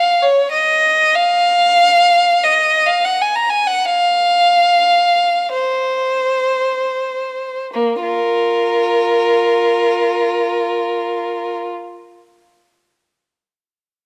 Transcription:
Already playing: F5
0.22 C#5
0.51 D#5
1.15 F5
2.44 D#5
2.86 F5
3.05 F#5
3.21 G#5
3.36 A#5
3.50 G#5
3.67 F#5
3.85 F5
5.53 C5
7.73 A#3
8.02 F4 A#4

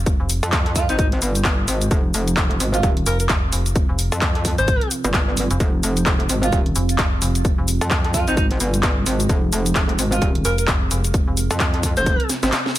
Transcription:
Already playing: F1 C4 F4 F5
0.06 kick, closed hi-hat, cabasa
0.20 F1
0.29 open hi-hat, cabasa
0.43 F2, closed hi-hat, cabasa
0.52 kick, clap, closed hi-hat, cabasa
0.66 closed hi-hat
0.76 F4, kick, open hi-hat, cabasa
0.89 G#1 D#4, closed hi-hat, cabasa
0.99 D#4, kick, closed hi-hat, cabasa
1.12 closed hi-hat
1.22 G1, open hi-hat, cabasa
1.35 closed hi-hat, cabasa
1.45 kick, clap, closed hi-hat, cabasa
1.68 G#1, open hi-hat, cabasa
1.81 closed hi-hat, cabasa
1.91 F1, kick, closed hi-hat, cabasa
2.14 F1, open hi-hat, cabasa
2.28 closed hi-hat, cabasa
2.37 F1, kick, clap, closed hi-hat, cabasa
2.51 closed hi-hat
2.60 G#1, open hi-hat, cabasa
2.74 F4, closed hi-hat, cabasa
2.83 D#1, kick, closed hi-hat, cabasa
2.97 closed hi-hat
3.06 F1 A#4, open hi-hat, cabasa
3.20 A#4, closed hi-hat, cabasa
3.29 kick, clap, closed hi-hat, cabasa
3.52 F1, open hi-hat, cabasa
3.66 closed hi-hat, cabasa
3.76 kick, closed hi-hat, cabasa
3.89 F1
3.99 open hi-hat, cabasa
4.12 F2, closed hi-hat, cabasa
4.21 kick, clap, closed hi-hat, cabasa
4.35 closed hi-hat
4.45 kick, open hi-hat, cabasa
4.58 G#1 C5, closed hi-hat, cabasa
4.68 kick, closed hi-hat, cabasa
4.81 closed hi-hat
4.91 open hi-hat, cabasa
5.04 G1, closed hi-hat, cabasa
5.14 kick, clap, closed hi-hat, cabasa
5.37 open hi-hat, cabasa
5.51 F1, closed hi-hat, cabasa
5.60 F1 G#4, kick, closed hi-hat, cabasa
5.83 F1, open hi-hat, cabasa
5.97 closed hi-hat, cabasa
6.06 F1, kick, clap, closed hi-hat, cabasa
6.20 closed hi-hat
6.29 G#1, open hi-hat, cabasa
6.43 F4, closed hi-hat, cabasa
6.52 D#1, kick, closed hi-hat, cabasa
6.66 closed hi-hat
6.76 F1, open hi-hat, cabasa
6.89 closed hi-hat, cabasa
6.98 kick, clap, closed hi-hat, cabasa
7.22 F1, open hi-hat, cabasa
7.35 closed hi-hat, cabasa
7.45 kick, closed hi-hat, cabasa
7.58 F1
7.68 open hi-hat, cabasa
7.81 F2, closed hi-hat, cabasa
7.91 kick, clap, closed hi-hat, cabasa
8.04 closed hi-hat
8.14 F4, kick, open hi-hat, cabasa
8.28 G#1 D#4, closed hi-hat, cabasa
8.37 D#4, kick, closed hi-hat, cabasa
8.51 closed hi-hat
8.60 G1, open hi-hat, cabasa
8.74 closed hi-hat, cabasa
8.83 kick, clap, closed hi-hat, cabasa
9.06 G#1, open hi-hat, cabasa
9.20 closed hi-hat, cabasa
9.29 F1, kick, closed hi-hat, cabasa
9.53 F1, open hi-hat, cabasa
9.66 closed hi-hat, cabasa
9.75 F1, kick, clap, closed hi-hat, cabasa
9.89 closed hi-hat
9.99 G#1, open hi-hat, cabasa
10.12 F4, closed hi-hat, cabasa
10.22 D#1, kick, closed hi-hat, cabasa
10.35 closed hi-hat
10.45 F1 A#4, open hi-hat, cabasa
10.58 A#4, closed hi-hat, cabasa
10.68 F1, kick, clap, closed hi-hat, cabasa
10.91 F1, open hi-hat, cabasa
11.04 closed hi-hat, cabasa
11.14 kick, closed hi-hat, cabasa
11.28 F1
11.37 open hi-hat, cabasa
11.51 F2, closed hi-hat, cabasa
11.60 kick, clap, closed hi-hat, cabasa
11.74 closed hi-hat
11.83 kick, open hi-hat, cabasa
11.97 F1 C5, closed hi-hat, cabasa
12.06 kick, closed hi-hat, cabasa
12.20 closed hi-hat
12.29 snare, open hi-hat, cabasa
12.43 G#1, snare, closed hi-hat, cabasa
12.52 snare, clap, closed hi-hat, cabasa
12.66 snare
12.76 open hi-hat, cabasa

